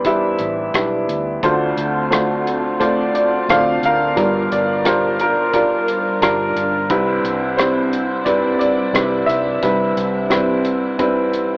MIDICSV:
0, 0, Header, 1, 5, 480
1, 0, Start_track
1, 0, Key_signature, 0, "major"
1, 0, Tempo, 684151
1, 1007, Time_signature, 4, 2, 24, 8
1, 8118, End_track
2, 0, Start_track
2, 0, Title_t, "Upright piano"
2, 0, Program_c, 0, 0
2, 0, Control_c, 0, 64, 127
2, 0, Note_on_c, 0, 40, 59
2, 0, Note_on_c, 0, 52, 57
2, 0, Note_on_c, 0, 55, 61
2, 0, Note_on_c, 0, 62, 60
2, 0, Note_on_c, 0, 64, 54
2, 0, Note_on_c, 0, 67, 49
2, 0, Note_on_c, 0, 71, 69
2, 0, Note_on_c, 0, 72, 64
2, 0, Note_on_c, 0, 74, 73
2, 41, Note_off_c, 0, 55, 0
2, 41, Note_off_c, 0, 64, 0
2, 41, Note_on_c, 0, 55, 64
2, 41, Note_on_c, 0, 64, 56
2, 43, Note_off_c, 0, 62, 0
2, 43, Note_on_c, 0, 62, 58
2, 45, Note_off_c, 0, 71, 0
2, 45, Note_on_c, 0, 71, 66
2, 47, Note_on_c, 0, 76, 68
2, 52, Note_off_c, 0, 67, 0
2, 52, Note_on_c, 0, 67, 46
2, 418, Note_off_c, 0, 55, 0
2, 418, Note_off_c, 0, 64, 0
2, 419, Note_off_c, 0, 62, 0
2, 420, Note_off_c, 0, 71, 0
2, 522, Note_on_c, 0, 64, 57
2, 523, Note_on_c, 0, 62, 54
2, 524, Note_on_c, 0, 55, 61
2, 525, Note_on_c, 0, 71, 63
2, 741, Note_off_c, 0, 76, 0
2, 900, Note_off_c, 0, 62, 0
2, 900, Note_off_c, 0, 64, 0
2, 901, Note_off_c, 0, 55, 0
2, 901, Note_off_c, 0, 71, 0
2, 977, Note_off_c, 0, 40, 0
2, 979, Note_off_c, 0, 52, 0
2, 984, Note_off_c, 0, 67, 0
2, 1005, Note_on_c, 0, 57, 72
2, 1006, Note_off_c, 0, 72, 0
2, 1006, Note_on_c, 0, 62, 71
2, 1006, Note_on_c, 0, 72, 85
2, 1007, Note_on_c, 0, 50, 62
2, 1009, Note_on_c, 0, 38, 62
2, 1010, Note_on_c, 0, 65, 67
2, 1017, Control_c, 0, 64, 0
2, 1022, Note_off_c, 0, 74, 0
2, 1134, Control_c, 0, 64, 127
2, 1381, Note_off_c, 0, 57, 0
2, 1381, Note_off_c, 0, 62, 0
2, 1381, Note_off_c, 0, 72, 0
2, 1383, Note_off_c, 0, 65, 0
2, 1476, Note_on_c, 0, 57, 57
2, 1478, Note_on_c, 0, 72, 69
2, 1479, Note_on_c, 0, 65, 52
2, 1480, Note_on_c, 0, 62, 51
2, 1856, Note_off_c, 0, 57, 0
2, 1857, Note_off_c, 0, 72, 0
2, 1858, Note_off_c, 0, 62, 0
2, 1858, Note_off_c, 0, 65, 0
2, 1960, Note_on_c, 0, 57, 65
2, 1962, Note_on_c, 0, 62, 56
2, 1962, Note_on_c, 0, 72, 68
2, 1965, Note_on_c, 0, 65, 57
2, 1968, Note_on_c, 0, 74, 82
2, 2196, Note_off_c, 0, 74, 0
2, 2206, Note_on_c, 0, 74, 75
2, 2338, Note_off_c, 0, 57, 0
2, 2339, Note_off_c, 0, 62, 0
2, 2339, Note_off_c, 0, 72, 0
2, 2340, Note_off_c, 0, 65, 0
2, 2452, Note_on_c, 0, 57, 60
2, 2452, Note_on_c, 0, 62, 57
2, 2453, Note_off_c, 0, 74, 0
2, 2453, Note_on_c, 0, 65, 59
2, 2454, Note_on_c, 0, 77, 89
2, 2456, Note_on_c, 0, 72, 67
2, 2693, Note_off_c, 0, 77, 0
2, 2703, Note_on_c, 0, 77, 84
2, 2705, Note_on_c, 0, 70, 63
2, 2824, Note_off_c, 0, 57, 0
2, 2824, Note_off_c, 0, 62, 0
2, 2824, Note_off_c, 0, 65, 0
2, 2826, Note_off_c, 0, 72, 0
2, 2898, Note_off_c, 0, 50, 0
2, 2899, Note_off_c, 0, 38, 0
2, 2912, Note_off_c, 0, 70, 0
2, 2921, Note_on_c, 0, 31, 59
2, 2921, Note_on_c, 0, 65, 62
2, 2922, Note_on_c, 0, 55, 66
2, 2922, Note_on_c, 0, 62, 60
2, 2922, Note_on_c, 0, 70, 70
2, 2924, Note_on_c, 0, 43, 58
2, 2937, Control_c, 0, 64, 0
2, 3054, Control_c, 0, 64, 127
2, 3172, Note_on_c, 0, 74, 77
2, 3188, Note_off_c, 0, 77, 0
2, 3298, Note_off_c, 0, 55, 0
2, 3298, Note_off_c, 0, 62, 0
2, 3298, Note_off_c, 0, 65, 0
2, 3298, Note_off_c, 0, 70, 0
2, 3402, Note_on_c, 0, 55, 62
2, 3402, Note_on_c, 0, 62, 58
2, 3403, Note_on_c, 0, 65, 59
2, 3403, Note_on_c, 0, 70, 67
2, 3416, Note_off_c, 0, 74, 0
2, 3421, Note_on_c, 0, 72, 68
2, 3637, Note_off_c, 0, 72, 0
2, 3645, Note_off_c, 0, 70, 0
2, 3649, Note_off_c, 0, 65, 0
2, 3656, Note_on_c, 0, 70, 85
2, 3660, Note_on_c, 0, 65, 50
2, 3778, Note_off_c, 0, 55, 0
2, 3778, Note_off_c, 0, 62, 0
2, 3876, Note_off_c, 0, 70, 0
2, 3878, Note_off_c, 0, 65, 0
2, 3887, Note_on_c, 0, 55, 66
2, 3887, Note_on_c, 0, 70, 74
2, 3888, Note_on_c, 0, 62, 64
2, 3889, Note_on_c, 0, 65, 64
2, 4259, Note_off_c, 0, 55, 0
2, 4259, Note_off_c, 0, 70, 0
2, 4260, Note_off_c, 0, 62, 0
2, 4260, Note_off_c, 0, 65, 0
2, 4365, Note_on_c, 0, 70, 90
2, 4367, Note_on_c, 0, 55, 80
2, 4367, Note_on_c, 0, 62, 73
2, 4370, Note_on_c, 0, 65, 68
2, 4736, Note_off_c, 0, 70, 0
2, 4738, Note_off_c, 0, 55, 0
2, 4738, Note_off_c, 0, 62, 0
2, 4739, Note_off_c, 0, 65, 0
2, 4810, Note_off_c, 0, 31, 0
2, 4811, Note_off_c, 0, 43, 0
2, 4839, Note_on_c, 0, 48, 70
2, 4842, Note_on_c, 0, 36, 74
2, 4842, Note_on_c, 0, 64, 74
2, 4843, Note_on_c, 0, 55, 87
2, 4843, Note_on_c, 0, 60, 74
2, 4844, Note_on_c, 0, 71, 86
2, 4849, Control_c, 0, 64, 0
2, 4960, Control_c, 0, 64, 127
2, 5214, Note_off_c, 0, 55, 0
2, 5214, Note_off_c, 0, 64, 0
2, 5215, Note_off_c, 0, 60, 0
2, 5215, Note_off_c, 0, 71, 0
2, 5313, Note_on_c, 0, 72, 70
2, 5323, Note_on_c, 0, 55, 62
2, 5323, Note_on_c, 0, 64, 55
2, 5326, Note_on_c, 0, 60, 57
2, 5693, Note_off_c, 0, 55, 0
2, 5694, Note_off_c, 0, 64, 0
2, 5695, Note_off_c, 0, 60, 0
2, 5789, Note_on_c, 0, 74, 76
2, 5798, Note_on_c, 0, 64, 59
2, 5799, Note_on_c, 0, 60, 56
2, 5800, Note_on_c, 0, 71, 69
2, 5801, Note_on_c, 0, 55, 65
2, 5808, Note_off_c, 0, 72, 0
2, 6017, Note_off_c, 0, 74, 0
2, 6027, Note_on_c, 0, 74, 87
2, 6171, Note_off_c, 0, 64, 0
2, 6172, Note_off_c, 0, 60, 0
2, 6172, Note_off_c, 0, 71, 0
2, 6173, Note_off_c, 0, 55, 0
2, 6273, Note_on_c, 0, 60, 61
2, 6274, Note_on_c, 0, 55, 66
2, 6275, Note_on_c, 0, 64, 62
2, 6275, Note_on_c, 0, 71, 69
2, 6500, Note_on_c, 0, 76, 81
2, 6510, Note_off_c, 0, 71, 0
2, 6520, Note_on_c, 0, 71, 54
2, 6526, Note_off_c, 0, 74, 0
2, 6649, Note_off_c, 0, 60, 0
2, 6650, Note_off_c, 0, 55, 0
2, 6650, Note_off_c, 0, 64, 0
2, 6727, Note_off_c, 0, 48, 0
2, 6729, Note_off_c, 0, 36, 0
2, 6746, Note_off_c, 0, 71, 0
2, 6752, Note_on_c, 0, 36, 55
2, 6756, Note_on_c, 0, 48, 57
2, 6756, Note_on_c, 0, 64, 59
2, 6756, Note_on_c, 0, 71, 72
2, 6757, Note_on_c, 0, 55, 62
2, 6757, Note_on_c, 0, 60, 55
2, 6766, Control_c, 0, 64, 0
2, 6877, Control_c, 0, 64, 127
2, 7130, Note_off_c, 0, 55, 0
2, 7130, Note_off_c, 0, 60, 0
2, 7130, Note_off_c, 0, 64, 0
2, 7130, Note_off_c, 0, 71, 0
2, 7225, Note_on_c, 0, 64, 67
2, 7226, Note_on_c, 0, 55, 70
2, 7227, Note_on_c, 0, 60, 67
2, 7228, Note_on_c, 0, 71, 80
2, 7605, Note_off_c, 0, 64, 0
2, 7606, Note_off_c, 0, 55, 0
2, 7606, Note_off_c, 0, 60, 0
2, 7607, Note_off_c, 0, 71, 0
2, 7709, Note_on_c, 0, 60, 72
2, 7711, Note_on_c, 0, 71, 81
2, 7713, Note_on_c, 0, 55, 77
2, 7714, Note_on_c, 0, 64, 66
2, 8090, Note_off_c, 0, 60, 0
2, 8091, Note_off_c, 0, 71, 0
2, 8092, Note_off_c, 0, 55, 0
2, 8093, Note_off_c, 0, 64, 0
2, 8118, Note_off_c, 0, 36, 0
2, 8118, Note_off_c, 0, 48, 0
2, 8118, Note_off_c, 0, 76, 0
2, 8118, End_track
3, 0, Start_track
3, 0, Title_t, "String section"
3, 0, Program_c, 1, 48
3, 1007, Note_on_c, 1, 53, 55
3, 1010, Note_on_c, 1, 65, 60
3, 1011, Note_on_c, 1, 50, 58
3, 1012, Note_on_c, 1, 60, 53
3, 2907, Note_off_c, 1, 53, 0
3, 2909, Note_off_c, 1, 50, 0
3, 2910, Note_off_c, 1, 60, 0
3, 2934, Note_on_c, 1, 62, 55
3, 2935, Note_on_c, 1, 55, 62
3, 2936, Note_on_c, 1, 70, 63
3, 4814, Note_off_c, 1, 65, 0
3, 4826, Note_off_c, 1, 70, 0
3, 4843, Note_on_c, 1, 64, 68
3, 4846, Note_on_c, 1, 48, 61
3, 6739, Note_off_c, 1, 48, 0
3, 6753, Note_on_c, 1, 48, 60
3, 8118, Note_off_c, 1, 48, 0
3, 8118, Note_off_c, 1, 55, 0
3, 8118, Note_off_c, 1, 62, 0
3, 8118, Note_off_c, 1, 64, 0
3, 8118, End_track
4, 0, Start_track
4, 0, Title_t, "Fingered electric bass"
4, 0, Program_c, 2, 33
4, 0, Note_on_c, 2, 40, 75
4, 255, Note_off_c, 2, 40, 0
4, 278, Note_on_c, 2, 33, 68
4, 498, Note_off_c, 2, 33, 0
4, 519, Note_on_c, 2, 35, 70
4, 739, Note_off_c, 2, 35, 0
4, 762, Note_on_c, 2, 38, 71
4, 980, Note_off_c, 2, 38, 0
4, 1005, Note_on_c, 2, 38, 63
4, 1224, Note_off_c, 2, 38, 0
4, 1244, Note_on_c, 2, 38, 73
4, 2178, Note_off_c, 2, 38, 0
4, 2445, Note_on_c, 2, 38, 72
4, 2663, Note_off_c, 2, 38, 0
4, 2683, Note_on_c, 2, 38, 78
4, 2902, Note_off_c, 2, 38, 0
4, 2926, Note_on_c, 2, 31, 74
4, 3143, Note_off_c, 2, 31, 0
4, 3170, Note_on_c, 2, 31, 79
4, 4098, Note_off_c, 2, 31, 0
4, 4357, Note_on_c, 2, 31, 78
4, 4576, Note_off_c, 2, 31, 0
4, 4600, Note_on_c, 2, 31, 82
4, 4818, Note_off_c, 2, 31, 0
4, 4840, Note_on_c, 2, 36, 81
4, 5057, Note_off_c, 2, 36, 0
4, 5076, Note_on_c, 2, 36, 77
4, 6006, Note_off_c, 2, 36, 0
4, 6268, Note_on_c, 2, 36, 81
4, 6489, Note_off_c, 2, 36, 0
4, 6514, Note_on_c, 2, 36, 84
4, 6732, Note_off_c, 2, 36, 0
4, 6752, Note_on_c, 2, 36, 74
4, 6971, Note_off_c, 2, 36, 0
4, 6992, Note_on_c, 2, 36, 72
4, 7928, Note_off_c, 2, 36, 0
4, 8118, End_track
5, 0, Start_track
5, 0, Title_t, "Drums"
5, 34, Note_on_c, 9, 42, 54
5, 35, Note_on_c, 9, 36, 54
5, 105, Note_off_c, 9, 42, 0
5, 106, Note_off_c, 9, 36, 0
5, 272, Note_on_c, 9, 42, 43
5, 342, Note_off_c, 9, 42, 0
5, 520, Note_on_c, 9, 36, 58
5, 521, Note_on_c, 9, 42, 69
5, 528, Note_on_c, 9, 37, 82
5, 590, Note_off_c, 9, 36, 0
5, 591, Note_off_c, 9, 42, 0
5, 598, Note_off_c, 9, 37, 0
5, 765, Note_on_c, 9, 42, 48
5, 835, Note_off_c, 9, 42, 0
5, 1004, Note_on_c, 9, 36, 75
5, 1007, Note_on_c, 9, 42, 58
5, 1074, Note_off_c, 9, 36, 0
5, 1077, Note_off_c, 9, 42, 0
5, 1246, Note_on_c, 9, 42, 47
5, 1316, Note_off_c, 9, 42, 0
5, 1488, Note_on_c, 9, 42, 56
5, 1495, Note_on_c, 9, 37, 82
5, 1558, Note_off_c, 9, 42, 0
5, 1565, Note_off_c, 9, 37, 0
5, 1733, Note_on_c, 9, 42, 43
5, 1803, Note_off_c, 9, 42, 0
5, 1968, Note_on_c, 9, 36, 56
5, 1971, Note_on_c, 9, 42, 51
5, 2038, Note_off_c, 9, 36, 0
5, 2041, Note_off_c, 9, 42, 0
5, 2209, Note_on_c, 9, 42, 39
5, 2279, Note_off_c, 9, 42, 0
5, 2450, Note_on_c, 9, 42, 58
5, 2457, Note_on_c, 9, 37, 81
5, 2520, Note_off_c, 9, 42, 0
5, 2527, Note_off_c, 9, 37, 0
5, 2687, Note_on_c, 9, 42, 43
5, 2757, Note_off_c, 9, 42, 0
5, 2926, Note_on_c, 9, 42, 58
5, 2927, Note_on_c, 9, 36, 75
5, 2997, Note_off_c, 9, 36, 0
5, 2997, Note_off_c, 9, 42, 0
5, 3169, Note_on_c, 9, 42, 43
5, 3239, Note_off_c, 9, 42, 0
5, 3405, Note_on_c, 9, 42, 63
5, 3412, Note_on_c, 9, 37, 84
5, 3476, Note_off_c, 9, 42, 0
5, 3483, Note_off_c, 9, 37, 0
5, 3646, Note_on_c, 9, 42, 43
5, 3716, Note_off_c, 9, 42, 0
5, 3886, Note_on_c, 9, 36, 55
5, 3887, Note_on_c, 9, 42, 53
5, 3956, Note_off_c, 9, 36, 0
5, 3957, Note_off_c, 9, 42, 0
5, 4128, Note_on_c, 9, 42, 44
5, 4198, Note_off_c, 9, 42, 0
5, 4366, Note_on_c, 9, 42, 65
5, 4373, Note_on_c, 9, 37, 83
5, 4436, Note_off_c, 9, 42, 0
5, 4443, Note_off_c, 9, 37, 0
5, 4606, Note_on_c, 9, 42, 49
5, 4676, Note_off_c, 9, 42, 0
5, 4840, Note_on_c, 9, 36, 81
5, 4841, Note_on_c, 9, 42, 58
5, 4910, Note_off_c, 9, 36, 0
5, 4912, Note_off_c, 9, 42, 0
5, 5084, Note_on_c, 9, 42, 46
5, 5154, Note_off_c, 9, 42, 0
5, 5322, Note_on_c, 9, 42, 61
5, 5329, Note_on_c, 9, 37, 84
5, 5392, Note_off_c, 9, 42, 0
5, 5399, Note_off_c, 9, 37, 0
5, 5564, Note_on_c, 9, 42, 45
5, 5634, Note_off_c, 9, 42, 0
5, 5796, Note_on_c, 9, 36, 57
5, 5799, Note_on_c, 9, 42, 55
5, 5866, Note_off_c, 9, 36, 0
5, 5869, Note_off_c, 9, 42, 0
5, 6041, Note_on_c, 9, 42, 40
5, 6111, Note_off_c, 9, 42, 0
5, 6278, Note_on_c, 9, 42, 61
5, 6285, Note_on_c, 9, 37, 86
5, 6348, Note_off_c, 9, 42, 0
5, 6355, Note_off_c, 9, 37, 0
5, 6521, Note_on_c, 9, 42, 45
5, 6591, Note_off_c, 9, 42, 0
5, 6754, Note_on_c, 9, 36, 76
5, 6756, Note_on_c, 9, 42, 55
5, 6824, Note_off_c, 9, 36, 0
5, 6826, Note_off_c, 9, 42, 0
5, 6995, Note_on_c, 9, 42, 44
5, 7065, Note_off_c, 9, 42, 0
5, 7230, Note_on_c, 9, 42, 61
5, 7237, Note_on_c, 9, 37, 81
5, 7300, Note_off_c, 9, 42, 0
5, 7307, Note_off_c, 9, 37, 0
5, 7468, Note_on_c, 9, 42, 45
5, 7539, Note_off_c, 9, 42, 0
5, 7711, Note_on_c, 9, 36, 55
5, 7711, Note_on_c, 9, 42, 59
5, 7781, Note_off_c, 9, 36, 0
5, 7781, Note_off_c, 9, 42, 0
5, 7952, Note_on_c, 9, 42, 44
5, 8022, Note_off_c, 9, 42, 0
5, 8118, End_track
0, 0, End_of_file